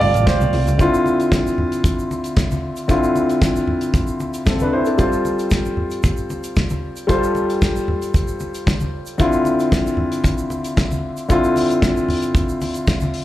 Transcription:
Already playing: C3 G3 A3 C4 F4 F5 G5 A5
0.00 G1 D5, open hi-hat, muted conga
0.14 A1, closed hi-hat, shaker
0.26 C5, kick, snare, closed hi-hat, high conga, shaker
0.41 B1, high conga, shaker
0.53 C2, open hi-hat
0.67 C#2, closed hi-hat, shaker
0.78 D3 C4 E4 F4, kick, closed hi-hat, shaker
0.94 shaker
1.06 muted conga, shaker
1.20 closed hi-hat, shaker
1.32 kick, snare, closed hi-hat, high conga, shaker
1.47 shaker
1.58 muted conga, low conga
1.72 closed hi-hat, shaker
1.84 kick, closed hi-hat, muted conga, low conga, shaker
1.99 shaker
2.11 muted conga, shaker
2.24 closed hi-hat, shaker
2.37 kick, snare, closed hi-hat, high conga, shaker
2.51 high conga, shaker
2.76 closed hi-hat, shaker
2.88 D3 C4 E4 F4, kick, closed hi-hat, shaker
3.04 shaker
3.16 muted conga, shaker
3.29 closed hi-hat, shaker
3.42 kick, snare, closed hi-hat, high conga, shaker
3.56 shaker
3.67 low conga
3.81 closed hi-hat, shaker
3.94 kick, closed hi-hat, muted conga, low conga, shaker
4.07 shaker
4.20 muted conga, shaker
4.34 closed hi-hat, shaker
4.46 C4 A4, kick, snare, closed hi-hat, high conga, shaker
4.59 D4 B4, high conga, shaker
4.73 E4 C5
4.85 C4 A4, closed hi-hat, shaker
4.98 G3 F4 A4 C5, kick, closed hi-hat, shaker
5.13 shaker
5.25 muted conga, shaker
5.39 closed hi-hat, shaker
5.51 kick, snare, closed hi-hat, high conga, shaker
5.65 shaker
5.77 low conga
5.91 closed hi-hat, shaker
6.03 kick, closed hi-hat, muted conga, low conga, shaker
6.17 shaker
6.30 muted conga, shaker
6.44 closed hi-hat, shaker
6.56 kick, snare, closed hi-hat, high conga, shaker
6.70 high conga, shaker
6.96 closed hi-hat, shaker
7.07 G3 F4 A4 C5, kick, closed hi-hat, shaker
7.23 shaker
7.35 muted conga, shaker
7.50 closed hi-hat, shaker
7.62 kick, snare, closed hi-hat, high conga, shaker
7.76 shaker
7.88 low conga
8.02 closed hi-hat, shaker
8.14 kick, closed hi-hat, muted conga, low conga, shaker
8.28 shaker
8.40 muted conga, shaker
8.54 closed hi-hat, shaker
8.66 kick, snare, closed hi-hat, high conga, shaker
8.80 high conga, shaker
9.06 closed hi-hat, shaker
9.18 D3 C4 E4 F4, kick, closed hi-hat, shaker
9.33 shaker
9.45 muted conga, shaker
9.60 closed hi-hat, shaker
9.72 kick, snare, closed hi-hat, high conga, shaker
9.87 shaker
9.97 low conga
10.12 closed hi-hat, shaker
10.24 kick, closed hi-hat, muted conga, low conga, shaker
10.38 shaker
10.50 muted conga, shaker
10.64 closed hi-hat, shaker
10.77 kick, snare, closed hi-hat, high conga, shaker
10.91 high conga, shaker
11.17 closed hi-hat, shaker
11.28 D3 C4 E4 F4, kick, closed hi-hat, shaker
11.44 shaker
11.56 open hi-hat, muted conga, shaker
11.70 closed hi-hat, shaker
11.82 kick, snare, closed hi-hat, high conga, shaker
11.97 shaker
12.08 open hi-hat, muted conga, low conga
12.22 closed hi-hat, shaker
12.35 kick, closed hi-hat, muted conga, low conga, shaker
12.49 shaker
12.61 open hi-hat, muted conga, shaker
12.74 closed hi-hat, shaker
12.87 kick, snare, closed hi-hat, high conga, shaker
13.00 high conga, shaker
13.14 open hi-hat

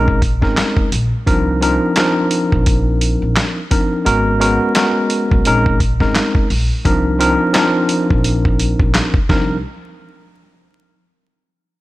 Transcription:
Already playing: A#1 G#3 C4 C#4 D#4 A#4
0.08 kick
0.22 kick, closed hi-hat
0.42 G#1 G#3 C4 C#4 D#4 A#4, kick, snare
0.57 snare, clap, closed hi-hat
0.77 kick
0.92 A#1, closed hi-hat
1.26 C2 F3 C4 D4 D#4 A#4, kick, closed hi-hat
1.62 F3 C4 D4 D#4 A#4, closed hi-hat
1.96 F3 C4 D4 D#4 A#4, snare, clap, closed hi-hat
2.31 closed hi-hat
2.52 A#1, kick
2.66 kick, closed hi-hat
3.01 closed hi-hat
3.22 A#1
3.36 snare, clap, closed hi-hat
3.71 F3 C4 D4 D#4 A#4, kick, closed hi-hat
4.05 G#1 G#3 B3 C#4 F#4 A#4, closed hi-hat
4.40 G#3 B3 C#4 F#4 A#4, closed hi-hat
4.75 G#3 B3 C#4 F#4 A#4, snare, clap, closed hi-hat
5.10 closed hi-hat
5.31 B1, kick
5.45 A#1 G#3 C4 C#4 D#4 A#4, closed hi-hat
5.66 kick
5.80 kick, closed hi-hat
6.00 G#1 G#3 C4 C#4 D#4 A#4, kick, snare
6.15 snare, clap, closed hi-hat
6.35 kick
6.50 A#1, open hi-hat
6.85 C2 F3 C4 D4 D#4 A#4, kick, closed hi-hat
7.19 F3 C4 D4 D#4 A#4, closed hi-hat
7.53 F3 C4 D4 D#4 A#4, snare, clap, closed hi-hat
7.89 closed hi-hat
8.10 A#1, kick
8.24 closed hi-hat
8.45 kick
8.59 closed hi-hat
8.79 A#1, kick
8.94 snare, clap, closed hi-hat
9.14 kick
9.29 C2 F3 C4 D4 D#4 A#4, kick, snare

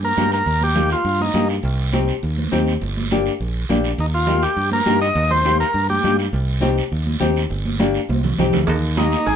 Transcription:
Already playing: G2
0.03 A#4, high conga
0.17 G2 A#3 D#4 G4, high conga, short guiro
0.32 A#4, short guiro
0.46 D#2, high conga, long guiro
0.61 G4, high conga
0.75 A#3 D#4 G4, high conga, short guiro
0.90 F4, short guiro
1.05 G2, high conga, long guiro
1.20 D#4, high conga
1.33 G2 A#3 D#4 G4, high conga, short guiro
1.49 short guiro
1.63 C2, high conga, long guiro
1.92 C4 D#4 G4, high conga, short guiro
2.08 short guiro
2.23 D#2, high conga, long guiro
2.38 high conga
2.52 D#2 C4 D#4 G4, high conga, short guiro
2.67 short guiro
2.82 G1, high conga, long guiro
2.97 high conga
3.11 A#3 D4 G4, high conga, short guiro
3.26 short guiro
3.40 A#1, high conga, long guiro
3.69 A#1 A#3 D4 G4, high conga, short guiro
3.84 short guiro
3.98 D#2 D#4, high conga, long guiro
4.14 F4
4.27 A#3 D#4 G4, high conga, short guiro
4.42 G4, short guiro
4.57 G2, high conga, long guiro
4.71 A#4, high conga
4.85 G2 A#3 D#4 G4, high conga, short guiro
5.01 D#5, short guiro
5.15 D#2, high conga, long guiro
5.31 C5, high conga
5.45 A#3 D#4 G4, high conga, short guiro
5.60 A#4, short guiro
5.74 G2, high conga, long guiro
5.89 G4, high conga
6.03 G2 A#3 D#4 G4, high conga, short guiro
6.19 short guiro
6.33 C2, high conga, long guiro
6.60 C4 D#4 G4, high conga, short guiro
6.78 short guiro
6.92 D#2, high conga, long guiro
7.06 high conga
7.20 D#2 C4 D#4 G4, high conga, short guiro
7.36 short guiro
7.50 G1, high conga, long guiro
7.65 high conga
7.79 A#3 D4 G4, high conga, short guiro
7.94 short guiro
8.09 C2, high conga, long guiro
8.24 low conga
8.38 C2 C4 D#4 G4, low conga, short guiro
8.53 D2, low conga, short guiro
8.67 D#2, cowbell, high conga, long guiro
8.97 A#3 D#4 G4, high conga, short guiro
9.12 short guiro
9.26 G#1 D#4 G#4, cowbell, high conga, long guiro

